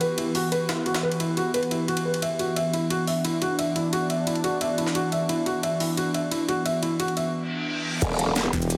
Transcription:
Already playing: E3 B3 G4
0.01 B4, ride
0.18 E4, closed hi-hat, ride
0.35 F#4, open hi-hat
0.52 B4, closed hi-hat, ride
0.69 E4, snare, ride
0.86 F#4, ride
0.94 snare, ride
1.03 B4
1.12 ride
1.20 E4, closed hi-hat, ride
1.37 F#4, ride
1.54 B4, closed hi-hat, ride
1.63 ride
1.71 E4, ride
1.88 F#4, closed hi-hat, ride
1.97 ride
2.05 B4, closed hi-hat
2.14 ride
2.22 E5, closed hi-hat, ride
2.39 F#4, ride
2.56 D4 E5, closed hi-hat, ride
2.73 E4, closed hi-hat, ride
2.90 F#4, closed hi-hat, ride
3.07 E5, closed hi-hat, open hi-hat
3.24 E4, closed hi-hat, ride
3.42 F#4, closed hi-hat, ride
3.59 E5, closed hi-hat, ride
3.76 E4, ride
3.93 F#4, closed hi-hat, ride
4.10 E5, closed hi-hat, ride
4.27 E4, closed hi-hat, ride
4.35 ride
4.44 F#4, ride
4.61 E5, closed hi-hat, ride
4.78 E4, closed hi-hat, ride
4.87 snare
4.95 F#4, closed hi-hat, ride
5.12 E5, closed hi-hat, ride
5.29 E4, closed hi-hat, ride
5.46 F#4, closed hi-hat, ride
5.63 E5, closed hi-hat, ride
5.80 E4, open hi-hat
5.97 F#4, closed hi-hat, ride
6.14 E5, closed hi-hat, ride
6.31 E4, closed hi-hat, ride
6.48 F#4, closed hi-hat, ride
6.65 E5, closed hi-hat, ride
6.82 E4, closed hi-hat, ride
7.00 F#4, closed hi-hat, ride
7.08 ride
7.17 E5, closed hi-hat, ride
7.34 reverse cymbal
8.02 E1 E3 B3 G4, kick, closed hi-hat, crash, ride, shaker
8.19 closed hi-hat, ride
8.36 snare, closed hi-hat, ride, shaker
8.45 snare
8.53 E1, kick, snare, closed hi-hat, open hi-hat, shaker
8.62 shaker
8.70 closed hi-hat, ride, shaker

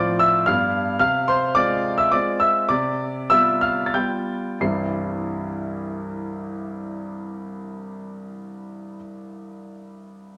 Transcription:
Already playing: A2 F3 C4 F4 C5 D5 C6 D6
0.19 E5 E6
0.46 G2 G3 B3 D4 F5 F6
0.99 C3 F5 F6
1.28 C5 C6
1.55 G#3 C4 F4 D5 D6
1.98 E5 E6
2.12 G#3 C4 F4 D5 D6
2.40 E5 E6
2.69 C3 D5 D6
3.30 G3 B3 F4 E5 E6
3.61 F5 F6
3.86 A6
3.94 G3 B3 F4 G5 G6
4.60 C2 G2 E3 G3 C4 E4 C7

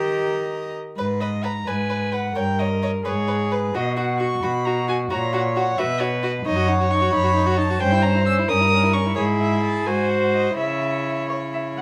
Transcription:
Already playing: D#3 G4 D#5 A#5
0.97 G#2 B4
1.20 B4 D#5
1.44 B4 A#5
1.67 G#2 B4 G#5
1.90 B4
2.12 B4 F#5
2.35 G2 A#4 C#5 G5
2.59 C#5 D#5
2.83 C#5 D#5
3.05 G#2 G#4 B4 C#5
3.28 B4
3.51 B4
3.74 B2 F#4 D#5
3.96 F#4 F#5
4.20 F#4 C#6
4.43 B2 F#4 B5
4.65 F#4 A#5
4.88 F#4 G#5
5.10 A#2 F#4 C#5 A#5
5.33 F#4 F#5
5.56 F#4 F#5
5.78 B2 F#4 B4 E5
6.00 F#4 C#5
6.23 F#4 D#5
6.45 F#2 D#4 C#5 D#5
6.56 F#4
6.68 D#4 F#5
6.80 F#4
6.91 D#4 C#6
7.02 F#4
7.12 F#2 D#4 B5
7.24 F#4
7.35 D#4
7.46 F#4
7.57 D#4 A5
7.70 F#4
7.80 G2 C#4 C5 G5
7.92 E4
8.02 C#4 A#5
8.15 E4
8.26 C#4 E6
8.39 E4
8.48 G2 C#4 A#4 D#6
8.61 E4
8.72 C#4
8.84 E4
8.93 C#4 C#6
9.06 E4
9.16 G#2 E4 G#4 C#5
9.40 E5
9.63 A5
9.86 G#2 F#4 C5 G#5
10.10 F#5
10.33 D#5
10.56 C#3 E4 C#5 E5
11.29 C#5
11.53 E5
11.77 F#5

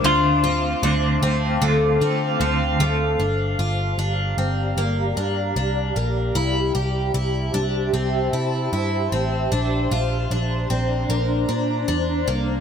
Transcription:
Already playing: C5 D6
0.04 D2 D3 A3 C4 D4 F4 F5 A5
0.43 C4 F4
0.47 A3
0.82 D2 D3 A3 C4 D4 F4
1.21 D2 C4 F4
1.26 A3
1.60 D2 D3 A3 C4 F5
1.65 F4
2.00 D3 C4 F4
2.05 A3
2.39 D2 D3 A3 C4 F4
2.79 D2 A3 C4 F4
3.20 G1 D4 G4 D5 F5 A#5
3.59 G1 F4
3.98 G1 D4
4.37 G1 C4
4.77 G1 A#3
5.17 G2 D4
5.56 C2 D4
5.96 A#1 A#3
6.35 C2 E4 C5 E5 A5
6.75 C2 G4
7.14 C2 E4
7.54 C2 D4
7.93 C2 C4
8.33 C3 E4
8.73 G2 E4
9.12 A1 C4
9.52 A#1 D4 D5 A#5
9.91 A#1 F4
10.31 A#1 D4
10.70 A#1 C4
11.09 A#1 A#3
11.49 A#2 D4
11.88 E2 D4
12.28 C2 A#3

